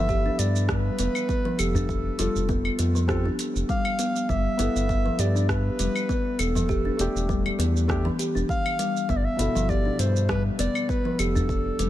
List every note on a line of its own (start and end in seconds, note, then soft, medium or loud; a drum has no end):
0.00 0.30 G1 medium
0.00 1.87 B3 medium
0.00 1.88 E4 medium
0.00 1.89 A4 medium
0.00 0.41 E5 loud
0.09 0.25 G4 medium
0.09 kick loud
0.09 shaker soft
0.26 0.39 D4 medium
0.39 0.90 G2 medium
0.39 0.69 D5 loud
0.39 closed hi-hat medium
0.39 shaker medium
0.56 shaker soft
0.69 0.98 G3 medium
0.69 1.61 B4 loud
0.69 kick loud
0.69 cross-stick medium
0.69 shaker soft
0.99 1.09 F1 medium
0.99 1.15 B3 loud
0.99 closed hi-hat medium
0.99 shaker medium
1.15 claves medium
1.15 shaker soft
1.29 1.44 B3 medium
1.29 kick loud
1.29 shaker soft
1.45 1.58 F3 loud
1.59 2.10 F1 medium
1.59 1.74 G4 medium
1.59 2.79 A4 medium
1.59 closed hi-hat medium
1.59 claves medium
1.59 shaker medium
1.75 1.88 D4 medium
1.75 udu loud
1.75 shaker soft
1.89 kick loud
1.89 shaker soft
2.19 2.29 F1 medium
2.19 2.48 G3 medium
2.19 3.06 F4 medium
2.19 3.07 A4 medium
2.19 closed hi-hat medium
2.19 shaker medium
2.36 2.70 F1 loud
2.36 udu medium
2.36 shaker soft
2.49 2.64 B3 loud
2.49 kick loud
2.49 shaker soft
2.65 claves medium
2.79 3.30 F2 medium
2.79 2.94 B3 medium
2.79 closed hi-hat medium
2.79 shaker medium
2.95 3.08 F3 medium
2.95 shaker soft
3.08 3.23 C4 medium
3.08 3.24 F4 medium
3.08 3.24 G4 medium
3.08 3.24 A4 loud
3.08 kick loud
3.08 cross-stick medium
3.08 shaker soft
3.26 3.38 D4 medium
3.39 closed hi-hat medium
3.39 shaker medium
3.56 3.64 F1 medium
3.56 shaker soft
3.69 3.98 G3 medium
3.69 4.31 F5 loud
3.69 kick loud
3.69 shaker soft
3.85 claves medium
3.99 4.15 B3 medium
3.99 closed hi-hat medium
3.99 shaker medium
4.16 shaker soft
4.29 4.48 G1 loud
4.29 4.58 G3 medium
4.29 5.21 E5 loud
4.29 kick loud
4.29 shaker soft
4.57 4.69 G1 loud
4.57 6.67 B3 medium
4.57 4.75 B3 loud
4.57 6.67 E4 medium
4.57 6.68 A4 medium
4.57 closed hi-hat medium
4.57 shaker medium
4.76 5.10 G1 medium
4.76 shaker soft
4.89 5.04 B3 medium
4.89 kick loud
4.89 shaker soft
5.06 5.18 F3 loud
5.19 5.70 G2 medium
5.19 5.35 G4 medium
5.19 5.49 D5 loud
5.19 closed hi-hat medium
5.19 shaker medium
5.36 5.48 D4 medium
5.36 shaker soft
5.49 6.41 B4 loud
5.49 kick loud
5.49 cross-stick medium
5.49 shaker soft
5.79 5.89 F1 medium
5.79 6.08 G3 medium
5.79 closed hi-hat medium
5.79 shaker medium
5.96 claves medium
5.96 shaker soft
6.09 6.25 B3 loud
6.09 kick loud
6.09 shaker soft
6.39 6.90 E1 medium
6.39 6.54 B3 medium
6.39 7.59 A4 loud
6.39 closed hi-hat medium
6.39 claves medium
6.39 shaker medium
6.55 6.68 F3 medium
6.55 udu loud
6.55 shaker soft
6.69 6.85 G4 medium
6.69 kick loud
6.69 shaker soft
6.85 6.98 D4 medium
6.97 7.09 E1 medium
6.97 7.85 A3 medium
6.97 7.86 D4 medium
6.97 closed hi-hat medium
6.97 shaker medium
7.01 7.87 G4 medium
7.15 7.50 E1 medium
7.15 udu medium
7.15 shaker soft
7.29 7.58 G3 medium
7.29 kick loud
7.29 shaker soft
7.46 claves medium
7.59 8.10 E2 medium
7.59 7.75 B3 loud
7.59 closed hi-hat medium
7.59 shaker medium
7.77 shaker soft
7.88 8.03 A3 medium
7.88 8.04 B3 medium
7.88 8.04 D4 medium
7.88 8.04 G4 loud
7.88 kick loud
7.88 cross-stick medium
7.88 shaker soft
8.05 8.18 E3 loud
8.19 8.35 G4 medium
8.19 closed hi-hat medium
8.19 shaker medium
8.35 8.44 E1 medium
8.35 8.48 D4 medium
8.35 shaker soft
8.49 9.11 F5 loud
8.49 kick loud
8.49 shaker soft
8.66 claves medium
8.79 9.08 G3 medium
8.79 closed hi-hat medium
8.79 shaker medium
8.97 shaker soft
9.09 9.28 G1 loud
9.09 9.25 B3 loud
9.09 9.18 E5 loud
9.09 kick loud
9.09 shaker soft
9.17 9.26 D5 medium
9.25 9.71 E5 loud
9.37 9.49 G1 loud
9.37 11.46 B2 medium
9.37 9.54 B3 medium
9.37 11.47 E4 medium
9.37 closed hi-hat medium
9.37 shaker medium
9.41 11.48 A4 medium
9.55 9.90 G1 medium
9.55 9.68 F3 loud
9.55 shaker soft
9.69 9.85 G4 medium
9.69 10.01 D5 loud
9.69 kick loud
9.69 shaker soft
9.85 9.98 D4 medium
9.99 10.50 G2 medium
9.99 10.29 C5 medium
9.99 closed hi-hat medium
9.99 shaker medium
10.16 shaker soft
10.29 10.58 G3 medium
10.29 10.43 B4 loud
10.29 kick loud
10.29 cross-stick medium
10.29 shaker soft
10.59 10.69 F1 medium
10.59 10.75 B3 loud
10.59 10.91 D5 loud
10.59 closed hi-hat loud
10.59 shaker medium
10.75 claves medium
10.75 shaker soft
10.89 11.04 B3 medium
10.89 11.21 B4 loud
10.89 kick loud
10.89 shaker soft
11.05 11.18 F3 loud
11.19 11.70 F1 medium
11.19 11.35 G4 medium
11.19 11.89 A4 medium
11.19 closed hi-hat medium
11.19 claves medium
11.19 shaker medium
11.35 11.48 D4 medium
11.35 udu medium
11.35 shaker soft
11.49 kick loud
11.49 shaker soft
11.79 11.89 F1 loud
11.79 11.89 G3 medium
11.79 closed hi-hat medium
11.79 shaker medium